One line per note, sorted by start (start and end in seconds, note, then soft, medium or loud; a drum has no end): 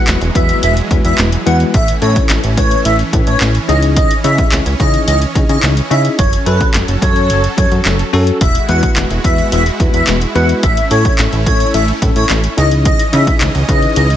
0.00 6.15 E3 medium
0.00 1.72 F#3 medium
0.00 0.18 G#3 medium
0.00 1.72 G#3 medium
0.00 0.18 B3 medium
0.00 0.18 E4 medium
0.00 0.18 F#4 medium
0.00 0.18 B4 medium
0.07 0.17 E1 loud
0.07 snare medium
0.07 clap loud
0.07 closed hi-hat loud
0.21 0.30 E1 loud
0.21 closed hi-hat medium
0.35 0.53 E2 loud
0.35 0.73 G#3 medium
0.35 0.73 B3 medium
0.35 0.73 E4 medium
0.35 0.73 F#4 medium
0.35 0.73 B4 medium
0.35 0.56 E5 medium
0.35 kick medium
0.35 closed hi-hat medium
0.49 closed hi-hat soft
0.63 0.81 E1 loud
0.63 0.73 E5 medium
0.63 closed hi-hat loud
0.77 closed hi-hat medium
0.91 1.00 E2 loud
0.91 1.29 G#3 medium
0.91 1.29 B3 medium
0.91 1.29 E4 medium
0.91 1.29 F#4 medium
0.91 1.29 B4 medium
0.91 kick medium
0.91 closed hi-hat medium
1.04 1.14 E2 loud
1.04 1.15 E5 medium
1.04 closed hi-hat soft
1.18 1.37 E1 loud
1.18 snare medium
1.18 clap loud
1.18 closed hi-hat medium
1.32 closed hi-hat medium
1.46 1.65 E2 loud
1.46 1.74 G#3 medium
1.46 1.74 B3 medium
1.46 1.74 E4 medium
1.46 1.74 F#4 medium
1.46 1.74 B4 loud
1.46 1.57 F#5 medium
1.46 closed hi-hat medium
1.60 closed hi-hat medium
1.74 1.92 A1 loud
1.74 3.67 A3 medium
1.74 8.37 C#4 medium
1.74 1.95 E5 loud
1.74 kick loud
1.74 closed hi-hat loud
1.88 closed hi-hat medium
2.01 2.20 A2 loud
2.01 2.40 C#4 medium
2.01 2.40 E4 medium
2.01 2.40 A4 medium
2.01 2.23 C#5 medium
2.01 closed hi-hat medium
2.16 kick medium
2.16 closed hi-hat medium
2.29 2.39 A1 loud
2.29 snare medium
2.29 clap loud
2.29 closed hi-hat loud
2.44 2.59 A1 medium
2.44 closed hi-hat medium
2.57 2.76 A2 medium
2.57 2.95 C#4 medium
2.57 2.95 E4 medium
2.57 2.96 B4 medium
2.57 2.78 C#5 medium
2.57 kick loud
2.57 closed hi-hat medium
2.71 closed hi-hat soft
2.85 3.03 A1 loud
2.85 2.96 E5 medium
2.85 closed hi-hat loud
2.99 closed hi-hat medium
3.13 3.22 A2 loud
3.13 3.51 C#4 medium
3.13 3.51 E4 medium
3.13 3.51 B4 medium
3.13 kick loud
3.13 closed hi-hat medium
3.27 3.36 A2 loud
3.27 3.37 C#5 medium
3.27 closed hi-hat soft
3.41 3.59 A1 loud
3.41 snare medium
3.41 clap loud
3.41 closed hi-hat medium
3.55 closed hi-hat medium
3.68 4.05 C#2 loud
3.68 4.13 C#4 medium
3.68 4.13 D#4 medium
3.68 4.13 E4 medium
3.68 4.13 G#4 medium
3.68 3.79 D#5 medium
3.68 4.13 D#5 medium
3.68 closed hi-hat medium
3.82 closed hi-hat medium
3.96 4.17 D#5 loud
3.96 kick loud
3.96 closed hi-hat loud
4.11 closed hi-hat medium
4.24 4.42 C#3 loud
4.24 4.62 C#4 medium
4.24 4.62 E4 medium
4.24 4.62 G#4 medium
4.24 4.62 D#5 medium
4.24 4.45 E5 medium
4.24 4.62 E5 medium
4.24 closed hi-hat medium
4.38 kick loud
4.38 closed hi-hat medium
4.52 4.61 C#2 loud
4.52 snare medium
4.52 clap loud
4.52 closed hi-hat loud
4.66 4.75 C#2 loud
4.66 closed hi-hat medium
4.80 4.98 C#3 loud
4.80 5.18 C#4 medium
4.80 5.18 D#4 medium
4.80 5.18 E4 medium
4.80 5.18 G#4 medium
4.80 5.01 D#5 loud
4.80 5.18 D#5 medium
4.80 kick loud
4.80 closed hi-hat medium
4.94 closed hi-hat soft
5.07 5.26 C#2 loud
5.07 5.18 D#5 medium
5.07 closed hi-hat loud
5.22 closed hi-hat medium
5.35 5.44 C#3 loud
5.35 5.73 C#4 medium
5.35 5.73 D#4 medium
5.35 5.73 E4 medium
5.35 5.73 G#4 medium
5.35 5.73 D#5 medium
5.35 kick medium
5.35 closed hi-hat medium
5.49 5.58 C#3 loud
5.49 5.59 D#5 medium
5.49 closed hi-hat soft
5.63 5.81 C#2 loud
5.63 snare medium
5.63 clap loud
5.63 closed hi-hat medium
5.77 closed hi-hat medium
5.91 6.09 C#3 loud
5.91 6.19 C#4 medium
5.91 6.19 D#4 medium
5.91 6.19 E4 medium
5.91 6.19 G#4 medium
5.91 6.19 D#5 loud
5.91 6.01 E5 medium
5.91 closed hi-hat medium
6.05 closed hi-hat medium
6.18 6.37 F#1 loud
6.18 8.39 F#3 medium
6.18 8.39 A4 medium
6.18 6.39 C#5 loud
6.18 kick loud
6.18 closed hi-hat loud
6.33 closed hi-hat medium
6.46 6.64 F#2 loud
6.46 6.84 C#4 medium
6.46 6.84 F#4 medium
6.46 6.85 A4 loud
6.46 6.67 B4 medium
6.46 closed hi-hat medium
6.61 kick medium
6.61 closed hi-hat medium
6.74 6.83 F#1 loud
6.74 snare medium
6.74 clap loud
6.74 closed hi-hat loud
6.88 6.97 F#1 loud
6.88 closed hi-hat medium
7.02 7.31 F#2 loud
7.02 7.40 C#4 medium
7.02 7.40 F#4 medium
7.02 7.40 A4 medium
7.02 7.41 C#5 medium
7.02 kick loud
7.02 closed hi-hat medium
7.16 closed hi-hat soft
7.30 7.48 F#1 loud
7.30 closed hi-hat loud
7.44 closed hi-hat medium
7.57 7.67 F#2 loud
7.57 7.95 C#4 medium
7.57 7.95 F#4 medium
7.57 7.96 A4 medium
7.57 7.68 C#5 medium
7.57 kick loud
7.57 closed hi-hat medium
7.72 7.81 F#2 loud
7.72 closed hi-hat soft
7.85 8.04 F#1 loud
7.85 snare medium
7.85 clap loud
7.85 closed hi-hat medium
7.99 closed hi-hat medium
8.13 8.31 F#2 loud
8.13 8.41 C#4 loud
8.13 8.41 F#4 loud
8.13 8.41 A4 loud
8.13 open hi-hat medium
8.27 closed hi-hat medium
8.41 8.59 E1 loud
8.41 10.61 G#3 medium
8.41 12.54 E4 medium
8.41 10.61 F#4 medium
8.41 8.62 E5 medium
8.41 kick loud
8.41 closed hi-hat loud
8.55 closed hi-hat medium
8.69 8.87 E2 loud
8.69 9.07 G#3 medium
8.69 9.07 B3 medium
8.69 9.07 E4 medium
8.69 9.07 F#4 medium
8.69 9.07 B4 medium
8.69 8.90 F#5 medium
8.69 closed hi-hat medium
8.83 kick medium
8.83 closed hi-hat medium
8.96 9.06 E1 loud
8.96 snare medium
8.96 clap loud
8.96 closed hi-hat loud
9.10 9.19 E1 loud
9.10 closed hi-hat medium
9.24 9.42 E2 loud
9.24 9.62 G#3 medium
9.24 9.62 B3 medium
9.24 9.62 E4 medium
9.24 9.62 F#4 medium
9.24 9.62 B4 medium
9.24 9.45 E5 medium
9.24 kick medium
9.24 closed hi-hat medium
9.38 closed hi-hat soft
9.52 9.70 E1 loud
9.52 9.63 E5 medium
9.52 closed hi-hat loud
9.66 closed hi-hat medium
9.80 9.89 E2 loud
9.80 10.18 G#3 medium
9.80 10.18 B3 medium
9.80 10.18 E4 medium
9.80 10.18 F#4 medium
9.80 10.18 B4 medium
9.80 kick medium
9.80 closed hi-hat medium
9.94 10.03 E2 loud
9.94 10.04 E5 medium
9.94 closed hi-hat soft
10.07 10.26 E1 loud
10.07 snare medium
10.07 clap loud
10.07 closed hi-hat medium
10.21 closed hi-hat medium
10.35 10.54 E2 loud
10.35 10.63 G#3 medium
10.35 10.63 B3 medium
10.35 10.63 E4 medium
10.35 10.63 F#4 medium
10.35 10.63 B4 loud
10.35 10.46 F#5 medium
10.35 closed hi-hat medium
10.49 closed hi-hat medium
10.63 10.81 A1 loud
10.63 12.56 A3 medium
10.63 12.56 C#4 medium
10.63 10.84 E5 loud
10.63 kick loud
10.63 closed hi-hat loud
10.77 closed hi-hat medium
10.91 11.09 A2 loud
10.91 11.29 C#4 medium
10.91 11.29 E4 medium
10.91 11.29 A4 medium
10.91 11.12 C#5 medium
10.91 closed hi-hat medium
11.05 kick medium
11.05 closed hi-hat medium
11.19 11.28 A1 loud
11.19 snare medium
11.19 clap loud
11.19 closed hi-hat loud
11.33 11.48 A1 loud
11.33 closed hi-hat medium
11.46 11.64 A2 loud
11.46 11.84 C#4 medium
11.46 11.84 E4 medium
11.46 11.85 A4 medium
11.46 11.67 C#5 medium
11.46 kick medium
11.46 closed hi-hat medium
11.60 closed hi-hat soft
11.74 11.92 A1 loud
11.74 11.85 E5 medium
11.74 closed hi-hat loud
11.88 closed hi-hat medium
12.02 12.11 A2 loud
12.02 12.40 C#4 medium
12.02 12.40 E4 medium
12.02 12.40 A4 medium
12.02 kick loud
12.02 closed hi-hat medium
12.16 12.25 A2 loud
12.16 12.26 C#5 medium
12.16 closed hi-hat soft
12.29 12.48 A1 loud
12.29 snare medium
12.29 clap loud
12.29 closed hi-hat medium
12.44 closed hi-hat medium
12.57 12.94 C#2 loud
12.57 14.17 E3 medium
12.57 13.02 C#4 medium
12.57 14.17 C#4 medium
12.57 13.02 D#4 medium
12.57 13.02 E4 medium
12.57 13.02 G#4 medium
12.57 13.02 D#5 medium
12.57 12.68 D#5 medium
12.57 14.17 D#5 medium
12.57 closed hi-hat medium
12.71 closed hi-hat medium
12.85 13.06 D#5 loud
12.85 kick loud
12.85 closed hi-hat loud
12.99 closed hi-hat medium
13.13 13.31 C#3 loud
13.13 13.51 C#4 medium
13.13 13.51 D#4 medium
13.13 13.51 E4 medium
13.13 13.51 G#4 medium
13.13 13.51 D#5 medium
13.13 13.34 E5 medium
13.13 closed hi-hat medium
13.27 kick loud
13.27 closed hi-hat medium
13.41 13.50 C#2 loud
13.41 snare medium
13.41 clap loud
13.41 closed hi-hat loud
13.55 13.64 C#2 loud
13.55 closed hi-hat medium
13.68 13.87 C#3 loud
13.68 14.06 C#4 medium
13.68 14.06 D#4 medium
13.68 14.07 E4 medium
13.68 14.07 G#4 medium
13.68 14.07 B4 medium
13.68 13.90 D#5 loud
13.68 kick medium
13.68 closed hi-hat medium
13.82 closed hi-hat soft
13.96 14.15 C#2 loud
13.96 14.07 D#5 medium
13.96 closed hi-hat loud
14.10 closed hi-hat medium